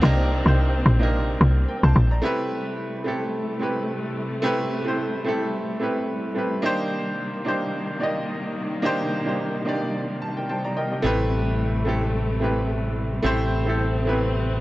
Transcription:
Already playing: string section C3 G3 A#3 C4, grand piano A#3 D4 D#4 G4 A4 C#5 D5
0.02 log drum bass C2, grand piano A#3 D4 D#4 G4 A#4
0.44 log drum bass C2, grand piano A#3 D4 D#4 G4 C5
0.86 log drum bass A#1
0.99 grand piano A#3 D4 D#4 G4 A#4
1.41 log drum bass C2
1.68 grand piano A#4 G5
1.83 log drum bass C2, grand piano C5 A5
1.96 log drum bass A#1
2.11 grand piano D5 A#5
2.22 string section C3 G3 A3, grand piano A3 C4 E4 G4 B4
3.04 grand piano A3 C4 E4 G4 A4
3.59 grand piano A3 C4 E4 G4 B4
4.42 grand piano A3 C4 E4 G4 B4
4.85 grand piano A3 C4 E4 G4 C5
5.24 grand piano A3 C4 E4 G4 A4
5.80 grand piano A3 C4 E4 G4 B4
6.35 grand piano A3 C4 E4 G4 B4
6.62 string section C3 D#3 A#3, grand piano A#3 D4 D#4 G4 C5
7.45 grand piano A#3 D4 D#4 G4 C5
8.00 grand piano A#3 D#4 G4 D5 D#5
8.82 grand piano A#3 D4 D#4 G4 C5
9.25 grand piano A#3 D4 D#4 G4 C5
9.65 grand piano A#3 D4 D#4 G4 D5
10.22 grand piano A5
10.37 grand piano A#4 G5
10.49 grand piano C5 G5 A5
10.64 grand piano D5 A#5
10.77 grand piano A#4 D#5 G5
10.92 grand piano G4 D#5
11.02 fretless electric bass A1, grand piano A3 C4 E4 G4 B4, string section A3
11.85 grand piano A3 C4 E4 G4 A4
12.40 grand piano A3 C4 E4 G4 B4
13.23 fretless electric bass A1, grand piano A3 C4 E4 G4 C5, string section C4
13.65 grand piano A3 C4 E4 G4 A4
14.05 grand piano A3 B3 E4 G4 B4
14.13 grand piano C4

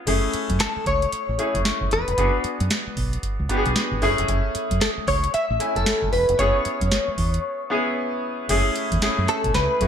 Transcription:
0.07 fingered electric bass F#1, grand piano A3 C#4 E4 G#4, kick, closed hi-hat, crash
0.33 muted fingered electric bass stroke, closed hi-hat
0.50 fingered electric bass F#2, kick, closed hi-hat
0.60 clean electric guitar A4, snare, closed hi-hat
0.76 muted fingered electric bass stroke
0.86 fingered electric bass C#2, clean electric guitar C#5, kick, closed hi-hat
1.02 closed hi-hat
1.12 muted fingered electric bass stroke, closed hi-hat
1.29 fingered electric bass A1
1.38 grand piano A3 C#4 E4 G#4, closed hi-hat
1.55 fingered electric bass F#1, kick, closed hi-hat
1.65 snare, closed hi-hat
1.81 fingered electric bass F#1, kick
1.91 fingered electric bass E1, clean electric guitar B4, closed hi-hat
2.08 fingered electric bass F1, closed hi-hat
2.18 fingered electric bass F#1, grand piano B3 D4 F#4 G#4, kick, closed hi-hat
2.44 muted fingered electric bass stroke, closed hi-hat
2.60 fingered electric bass F#2, closed hi-hat
2.70 snare, closed hi-hat
2.87 muted fingered electric bass stroke
2.97 fingered electric bass B1, kick, open hi-hat
3.13 closed hi-hat
3.23 muted fingered electric bass stroke, kick, closed hi-hat
3.39 fingered electric bass C#2
3.49 grand piano B3 D4 F#4 G4, kick, closed hi-hat
3.57 grand piano G#4
3.66 fingered electric bass B1, closed hi-hat
3.76 snare, closed hi-hat
3.92 fingered electric bass G#1, kick
4.02 fingered electric bass F#1, grand piano A3 C#4 E4 G#4, open hi-hat
4.18 fingered electric bass F1, closed hi-hat
4.28 fingered electric bass F#1, kick, closed hi-hat
4.55 muted fingered electric bass stroke, closed hi-hat
4.71 fingered electric bass F#2, kick, closed hi-hat
4.81 clean electric guitar A4, snare, closed hi-hat
4.98 muted fingered electric bass stroke
5.07 fingered electric bass C#2, clean electric guitar C#5, kick, open hi-hat
5.24 closed hi-hat
5.34 clean electric guitar E5, muted fingered electric bass stroke, closed hi-hat
5.50 fingered electric bass A1
5.60 grand piano A3 C#4 E4 G#5, closed hi-hat
5.76 fingered electric bass F#1, clean electric guitar A4, kick, closed hi-hat
5.86 snare, closed hi-hat
6.02 fingered electric bass F#1, kick
6.13 fingered electric bass E1, clean electric guitar B4, open hi-hat
6.29 fingered electric bass F1, closed hi-hat
6.39 fingered electric bass F#1, grand piano B3 C#4 E4 G#4, clean electric guitar C#5, kick, closed hi-hat
6.65 muted fingered electric bass stroke, closed hi-hat
6.81 fingered electric bass F#2, kick, closed hi-hat
6.91 snare, closed hi-hat
7.08 muted fingered electric bass stroke
7.18 fingered electric bass E2, kick, open hi-hat
7.34 closed hi-hat
7.70 grand piano B3 C#4 E4 G#4
8.49 fingered electric bass F#1, grand piano A3 C#4 E4 G#4, kick, closed hi-hat, crash
8.75 closed hi-hat
8.92 fingered electric bass E2, kick, closed hi-hat
9.02 grand piano A3 C#4 E4 G#4, snare, closed hi-hat
9.18 fingered electric bass F#2
9.28 clean electric guitar A4, closed hi-hat
9.44 fingered electric bass B1, kick, closed hi-hat
9.54 fingered electric bass C#2, clean electric guitar B4, snare, closed hi-hat
9.81 fingered electric bass F#2, grand piano A3 C#4 E4 F#4, kick, closed hi-hat

